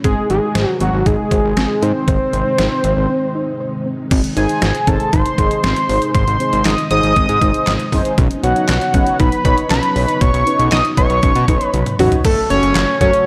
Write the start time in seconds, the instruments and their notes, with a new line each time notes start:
0.04 analog synth bass G#1, string machine C3 D#3 G#3 D#4, synth arpeggio sound C4, analog synth lead G#4, kick, closed hi-hat
0.30 analog synth bass G#1, synth arpeggio sound D#4, analog synth lead G#4, closed hi-hat
0.55 analog synth bass G#1, synth arpeggio sound C5, snare, closed hi-hat
0.81 analog synth bass G#1, synth arpeggio sound C4, analog synth lead F#4, closed hi-hat
0.93 analog synth bass G#1
1.06 analog synth bass G#1, synth arpeggio sound D#4, analog synth lead G#4, kick, closed hi-hat
1.31 analog synth bass G#1, synth arpeggio sound C5, kick, closed hi-hat
1.44 analog synth bass G#1
1.57 analog synth bass G#1, synth arpeggio sound C4, snare, closed hi-hat
1.82 analog synth bass G#2, synth arpeggio sound D#4, analog synth lead C5, closed hi-hat
2.08 analog synth bass G#1, synth arpeggio sound C5, kick, closed hi-hat
2.33 analog synth bass G#1, synth arpeggio sound C4, closed hi-hat
2.58 analog synth bass G#1, synth arpeggio sound D#4, snare, closed hi-hat
2.84 analog synth bass G#1, synth arpeggio sound C5, closed hi-hat
2.97 analog synth bass G#1
3.09 synth arpeggio sound C4
3.35 synth arpeggio sound D#4
3.60 synth arpeggio sound C5
3.86 synth arpeggio sound C4
4.11 analog synth bass G#1, string machine C3 D#3 G#3 D#4, synth arpeggio sound C4, kick, closed hi-hat, crash
4.24 closed hi-hat
4.37 analog synth bass G#1, synth arpeggio sound D#4, analog polysynth D#4 G#4 C5, analog synth lead G#5, closed hi-hat
4.49 closed hi-hat
4.62 analog synth bass G#1, synth arpeggio sound C5, snare, closed hi-hat
4.75 closed hi-hat
4.87 analog synth bass G#1, synth arpeggio sound C4, analog polysynth D#4 G#4 C5, analog synth lead A5, kick, closed hi-hat
5.00 closed hi-hat
5.13 analog synth bass G#1, synth arpeggio sound D#4, analog synth lead C6, kick, closed hi-hat
5.26 closed hi-hat
5.38 analog synth bass G#1, analog polysynth D#4 G#4 C5, synth arpeggio sound C5, kick, closed hi-hat
5.51 closed hi-hat
5.64 analog synth bass G#1, synth arpeggio sound C4, analog synth lead C6, snare, closed hi-hat
5.76 closed hi-hat
5.89 analog synth bass G#1, synth arpeggio sound D#4, analog polysynth D#4 G#4 C5, open hi-hat
6.02 closed hi-hat
6.14 analog synth bass G#1, synth arpeggio sound C5, analog synth lead C6, kick, closed hi-hat
6.27 analog synth bass G#1, closed hi-hat
6.40 synth arpeggio sound C4, analog polysynth D#4 G#4 C5, closed hi-hat
6.53 analog synth bass G#1, closed hi-hat
6.65 analog synth bass G#1, synth arpeggio sound D#4, analog synth lead D#6, snare, clap, closed hi-hat
6.78 closed hi-hat
6.91 analog synth bass G#1, analog polysynth D#4 G#4 C5, synth arpeggio sound C5, analog synth lead D#6, closed hi-hat
7.03 analog synth bass G#1, closed hi-hat
7.16 analog synth bass G#1, synth arpeggio sound C4, kick, closed hi-hat
7.29 analog synth bass G#2, closed hi-hat
7.41 analog synth bass G#1, analog polysynth D#4 G#4 C5, synth arpeggio sound D#4, kick, closed hi-hat
7.54 closed hi-hat
7.67 analog synth bass G#1, synth arpeggio sound C5, snare, clap, closed hi-hat
7.80 closed hi-hat
7.92 analog synth bass F#1, synth arpeggio sound C4, analog polysynth D#4 G#4 C5, kick, open hi-hat
8.05 closed hi-hat
8.18 analog synth bass B1, string machine C#3 F#3 B3, synth arpeggio sound C#4, kick, closed hi-hat
8.31 closed hi-hat
8.43 analog synth bass B1, analog polysynth D#4 B4 C#5, synth arpeggio sound D#4, analog synth lead F#5, closed hi-hat
8.56 closed hi-hat
8.69 analog synth bass B1, synth arpeggio sound C#5, snare, clap, closed hi-hat
8.81 closed hi-hat
8.94 analog synth bass B1, synth arpeggio sound C#4, analog polysynth D#4 B4 C#5, kick, closed hi-hat
9.07 closed hi-hat
9.19 analog synth bass B1, synth arpeggio sound D#4, analog synth lead B5, kick, closed hi-hat
9.32 closed hi-hat
9.45 analog synth bass B1, analog polysynth D#4 B4 C#5, synth arpeggio sound C#5, analog synth lead B5, kick, closed hi-hat
9.58 closed hi-hat
9.70 analog synth bass B1, synth arpeggio sound C#4, analog synth lead B5, snare, clap, closed hi-hat
9.83 closed hi-hat
9.96 analog synth bass B1, analog polysynth D#4 B4 C#5, synth arpeggio sound D#4, open hi-hat
10.09 closed hi-hat
10.21 analog synth bass B1, synth arpeggio sound C#5, analog synth lead C#6, kick, closed hi-hat
10.34 analog synth bass B1, closed hi-hat
10.47 synth arpeggio sound C#4, analog polysynth D#4 B4 C#5, closed hi-hat
10.59 analog synth bass B1, closed hi-hat
10.72 analog synth bass B1, synth arpeggio sound D#4, analog synth lead D#6, snare, clap, closed hi-hat
10.85 closed hi-hat
10.97 analog synth bass B1, analog polysynth D#4 B4 C#5, synth arpeggio sound C#5, analog synth lead C#6, kick, closed hi-hat
11.10 analog synth bass B1, closed hi-hat
11.23 analog synth bass B1, synth arpeggio sound C#4, kick, closed hi-hat
11.35 analog synth bass B2, closed hi-hat
11.48 analog synth bass B1, synth arpeggio sound D#4, analog polysynth D#4 B4 C#5, kick, closed hi-hat
11.61 closed hi-hat
11.66 analog synth lead B5
11.74 analog synth bass B1, synth arpeggio sound C#5, closed hi-hat, high tom
11.86 closed hi-hat, mid tom
11.99 analog synth bass A1, synth arpeggio sound C#4, analog polysynth D#4 B4 C#5, analog synth lead F#4, mid tom, open hi-hat
12.12 closed hi-hat, floor tom
12.24 analog synth bass F#1, string machine C#3 F#3 A3 F#4, analog synth lead A4, kick, closed hi-hat, crash
12.50 analog synth bass F#1, analog polysynth C#4 F#4 A4 C#5, analog synth lead C#5, closed hi-hat
12.63 analog synth bass F#1, closed hi-hat
12.75 analog synth bass F#1, snare, clap, closed hi-hat
13.01 analog synth bass F#2, analog polysynth C#4 F#4 A4 C#5, analog synth lead C#5, kick, closed hi-hat
13.14 analog polysynth C#4 F#4 A4 C#5, closed hi-hat